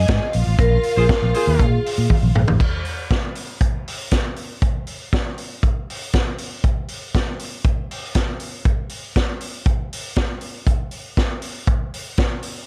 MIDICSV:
0, 0, Header, 1, 6, 480
1, 0, Start_track
1, 0, Tempo, 504202
1, 558, Time_signature, 4, 2, 24, 8
1, 12059, End_track
2, 0, Start_track
2, 0, Title_t, "Violin section"
2, 0, Program_c, 0, 48
2, 0, Note_on_c, 0, 68, 86
2, 0, Note_on_c, 0, 80, 98
2, 282, Note_off_c, 0, 68, 0
2, 283, Note_off_c, 0, 80, 0
2, 322, Note_on_c, 0, 65, 91
2, 324, Note_on_c, 0, 77, 93
2, 2440, Note_off_c, 0, 65, 0
2, 2441, Note_off_c, 0, 77, 0
2, 12059, End_track
3, 0, Start_track
3, 0, Title_t, "Vibraphone"
3, 0, Program_c, 1, 11
3, 0, Note_on_c, 1, 75, 99
3, 287, Note_off_c, 1, 75, 0
3, 571, Note_on_c, 1, 70, 127
3, 798, Note_off_c, 1, 70, 0
3, 809, Note_on_c, 1, 70, 108
3, 1535, Note_on_c, 1, 68, 73
3, 1544, Note_off_c, 1, 70, 0
3, 1972, Note_off_c, 1, 68, 0
3, 12059, End_track
4, 0, Start_track
4, 0, Title_t, "Horn section"
4, 0, Program_c, 2, 61
4, 921, Note_on_c, 2, 65, 90
4, 921, Note_on_c, 2, 72, 94
4, 922, Note_on_c, 2, 68, 84
4, 996, Note_off_c, 2, 65, 0
4, 996, Note_off_c, 2, 72, 0
4, 997, Note_off_c, 2, 68, 0
4, 1281, Note_on_c, 2, 65, 89
4, 1283, Note_on_c, 2, 68, 97
4, 1283, Note_on_c, 2, 72, 98
4, 1585, Note_off_c, 2, 65, 0
4, 1586, Note_off_c, 2, 68, 0
4, 1586, Note_off_c, 2, 72, 0
4, 12059, End_track
5, 0, Start_track
5, 0, Title_t, "Fingered electric bass"
5, 0, Program_c, 3, 33
5, 87, Note_on_c, 3, 44, 108
5, 168, Note_off_c, 3, 44, 0
5, 331, Note_on_c, 3, 34, 91
5, 411, Note_off_c, 3, 34, 0
5, 447, Note_on_c, 3, 33, 83
5, 528, Note_off_c, 3, 33, 0
5, 562, Note_on_c, 3, 34, 110
5, 729, Note_off_c, 3, 34, 0
5, 926, Note_on_c, 3, 34, 103
5, 1007, Note_off_c, 3, 34, 0
5, 1165, Note_on_c, 3, 34, 86
5, 1247, Note_off_c, 3, 34, 0
5, 1402, Note_on_c, 3, 39, 86
5, 1485, Note_off_c, 3, 39, 0
5, 1523, Note_on_c, 3, 46, 92
5, 1690, Note_off_c, 3, 46, 0
5, 1885, Note_on_c, 3, 46, 79
5, 1966, Note_off_c, 3, 46, 0
5, 2122, Note_on_c, 3, 34, 88
5, 2204, Note_off_c, 3, 34, 0
5, 2242, Note_on_c, 3, 34, 84
5, 2325, Note_off_c, 3, 34, 0
5, 2365, Note_on_c, 3, 33, 81
5, 2447, Note_off_c, 3, 33, 0
5, 12059, End_track
6, 0, Start_track
6, 0, Title_t, "Drums"
6, 75, Note_on_c, 9, 42, 62
6, 83, Note_on_c, 9, 36, 105
6, 86, Note_on_c, 9, 38, 118
6, 171, Note_off_c, 9, 42, 0
6, 179, Note_off_c, 9, 36, 0
6, 181, Note_off_c, 9, 38, 0
6, 315, Note_on_c, 9, 46, 59
6, 410, Note_off_c, 9, 46, 0
6, 559, Note_on_c, 9, 36, 127
6, 559, Note_on_c, 9, 42, 72
6, 654, Note_off_c, 9, 36, 0
6, 654, Note_off_c, 9, 42, 0
6, 792, Note_on_c, 9, 46, 53
6, 887, Note_off_c, 9, 46, 0
6, 1040, Note_on_c, 9, 36, 110
6, 1043, Note_on_c, 9, 42, 56
6, 1050, Note_on_c, 9, 38, 115
6, 1136, Note_off_c, 9, 36, 0
6, 1138, Note_off_c, 9, 42, 0
6, 1145, Note_off_c, 9, 38, 0
6, 1279, Note_on_c, 9, 46, 68
6, 1374, Note_off_c, 9, 46, 0
6, 1518, Note_on_c, 9, 36, 110
6, 1523, Note_on_c, 9, 42, 66
6, 1614, Note_off_c, 9, 36, 0
6, 1619, Note_off_c, 9, 42, 0
6, 1773, Note_on_c, 9, 46, 71
6, 1868, Note_off_c, 9, 46, 0
6, 1998, Note_on_c, 9, 48, 60
6, 2000, Note_on_c, 9, 36, 102
6, 2094, Note_off_c, 9, 48, 0
6, 2095, Note_off_c, 9, 36, 0
6, 2241, Note_on_c, 9, 45, 112
6, 2336, Note_off_c, 9, 45, 0
6, 2358, Note_on_c, 9, 43, 104
6, 2453, Note_off_c, 9, 43, 0
6, 2476, Note_on_c, 9, 36, 104
6, 2479, Note_on_c, 9, 49, 73
6, 2571, Note_off_c, 9, 36, 0
6, 2574, Note_off_c, 9, 49, 0
6, 2710, Note_on_c, 9, 46, 47
6, 2805, Note_off_c, 9, 46, 0
6, 2957, Note_on_c, 9, 36, 99
6, 2961, Note_on_c, 9, 42, 46
6, 2968, Note_on_c, 9, 38, 86
6, 3053, Note_off_c, 9, 36, 0
6, 3056, Note_off_c, 9, 42, 0
6, 3063, Note_off_c, 9, 38, 0
6, 3191, Note_on_c, 9, 46, 59
6, 3286, Note_off_c, 9, 46, 0
6, 3434, Note_on_c, 9, 42, 54
6, 3435, Note_on_c, 9, 36, 108
6, 3529, Note_off_c, 9, 42, 0
6, 3530, Note_off_c, 9, 36, 0
6, 3689, Note_on_c, 9, 46, 70
6, 3784, Note_off_c, 9, 46, 0
6, 3915, Note_on_c, 9, 42, 58
6, 3921, Note_on_c, 9, 36, 92
6, 3925, Note_on_c, 9, 38, 100
6, 4010, Note_off_c, 9, 42, 0
6, 4016, Note_off_c, 9, 36, 0
6, 4020, Note_off_c, 9, 38, 0
6, 4153, Note_on_c, 9, 46, 53
6, 4248, Note_off_c, 9, 46, 0
6, 4399, Note_on_c, 9, 36, 113
6, 4400, Note_on_c, 9, 42, 66
6, 4494, Note_off_c, 9, 36, 0
6, 4495, Note_off_c, 9, 42, 0
6, 4634, Note_on_c, 9, 46, 50
6, 4729, Note_off_c, 9, 46, 0
6, 4881, Note_on_c, 9, 36, 92
6, 4884, Note_on_c, 9, 42, 52
6, 4891, Note_on_c, 9, 38, 95
6, 4977, Note_off_c, 9, 36, 0
6, 4979, Note_off_c, 9, 42, 0
6, 4986, Note_off_c, 9, 38, 0
6, 5118, Note_on_c, 9, 46, 52
6, 5213, Note_off_c, 9, 46, 0
6, 5360, Note_on_c, 9, 36, 102
6, 5362, Note_on_c, 9, 42, 54
6, 5455, Note_off_c, 9, 36, 0
6, 5457, Note_off_c, 9, 42, 0
6, 5615, Note_on_c, 9, 46, 71
6, 5710, Note_off_c, 9, 46, 0
6, 5837, Note_on_c, 9, 42, 62
6, 5844, Note_on_c, 9, 36, 99
6, 5848, Note_on_c, 9, 38, 98
6, 5933, Note_off_c, 9, 42, 0
6, 5939, Note_off_c, 9, 36, 0
6, 5943, Note_off_c, 9, 38, 0
6, 6076, Note_on_c, 9, 46, 56
6, 6171, Note_off_c, 9, 46, 0
6, 6320, Note_on_c, 9, 42, 65
6, 6321, Note_on_c, 9, 36, 111
6, 6415, Note_off_c, 9, 42, 0
6, 6416, Note_off_c, 9, 36, 0
6, 6553, Note_on_c, 9, 46, 52
6, 6648, Note_off_c, 9, 46, 0
6, 6803, Note_on_c, 9, 36, 92
6, 6808, Note_on_c, 9, 42, 48
6, 6814, Note_on_c, 9, 38, 93
6, 6898, Note_off_c, 9, 36, 0
6, 6903, Note_off_c, 9, 42, 0
6, 6910, Note_off_c, 9, 38, 0
6, 7039, Note_on_c, 9, 46, 61
6, 7134, Note_off_c, 9, 46, 0
6, 7279, Note_on_c, 9, 36, 106
6, 7280, Note_on_c, 9, 42, 58
6, 7374, Note_off_c, 9, 36, 0
6, 7375, Note_off_c, 9, 42, 0
6, 7529, Note_on_c, 9, 46, 76
6, 7624, Note_off_c, 9, 46, 0
6, 7755, Note_on_c, 9, 42, 63
6, 7762, Note_on_c, 9, 36, 100
6, 7765, Note_on_c, 9, 38, 103
6, 7850, Note_off_c, 9, 42, 0
6, 7857, Note_off_c, 9, 36, 0
6, 7860, Note_off_c, 9, 38, 0
6, 7992, Note_on_c, 9, 46, 55
6, 8087, Note_off_c, 9, 46, 0
6, 8237, Note_on_c, 9, 42, 64
6, 8238, Note_on_c, 9, 36, 104
6, 8332, Note_off_c, 9, 42, 0
6, 8333, Note_off_c, 9, 36, 0
6, 8467, Note_on_c, 9, 46, 52
6, 8562, Note_off_c, 9, 46, 0
6, 8720, Note_on_c, 9, 36, 87
6, 8720, Note_on_c, 9, 42, 50
6, 8727, Note_on_c, 9, 38, 95
6, 8815, Note_off_c, 9, 36, 0
6, 8815, Note_off_c, 9, 42, 0
6, 8822, Note_off_c, 9, 38, 0
6, 8953, Note_on_c, 9, 46, 57
6, 9048, Note_off_c, 9, 46, 0
6, 9194, Note_on_c, 9, 42, 59
6, 9195, Note_on_c, 9, 36, 107
6, 9289, Note_off_c, 9, 42, 0
6, 9291, Note_off_c, 9, 36, 0
6, 9450, Note_on_c, 9, 46, 69
6, 9545, Note_off_c, 9, 46, 0
6, 9671, Note_on_c, 9, 42, 58
6, 9679, Note_on_c, 9, 36, 93
6, 9681, Note_on_c, 9, 38, 103
6, 9766, Note_off_c, 9, 42, 0
6, 9774, Note_off_c, 9, 36, 0
6, 9776, Note_off_c, 9, 38, 0
6, 9908, Note_on_c, 9, 46, 52
6, 10003, Note_off_c, 9, 46, 0
6, 10154, Note_on_c, 9, 36, 107
6, 10155, Note_on_c, 9, 42, 60
6, 10249, Note_off_c, 9, 36, 0
6, 10250, Note_off_c, 9, 42, 0
6, 10386, Note_on_c, 9, 46, 47
6, 10481, Note_off_c, 9, 46, 0
6, 10636, Note_on_c, 9, 36, 93
6, 10638, Note_on_c, 9, 42, 52
6, 10644, Note_on_c, 9, 38, 93
6, 10732, Note_off_c, 9, 36, 0
6, 10733, Note_off_c, 9, 42, 0
6, 10740, Note_off_c, 9, 38, 0
6, 10869, Note_on_c, 9, 46, 58
6, 10965, Note_off_c, 9, 46, 0
6, 11114, Note_on_c, 9, 36, 111
6, 11114, Note_on_c, 9, 42, 58
6, 11209, Note_off_c, 9, 36, 0
6, 11210, Note_off_c, 9, 42, 0
6, 11363, Note_on_c, 9, 46, 65
6, 11458, Note_off_c, 9, 46, 0
6, 11590, Note_on_c, 9, 42, 66
6, 11597, Note_on_c, 9, 36, 98
6, 11600, Note_on_c, 9, 38, 101
6, 11685, Note_off_c, 9, 42, 0
6, 11692, Note_off_c, 9, 36, 0
6, 11695, Note_off_c, 9, 38, 0
6, 11828, Note_on_c, 9, 46, 60
6, 11923, Note_off_c, 9, 46, 0
6, 12059, End_track
0, 0, End_of_file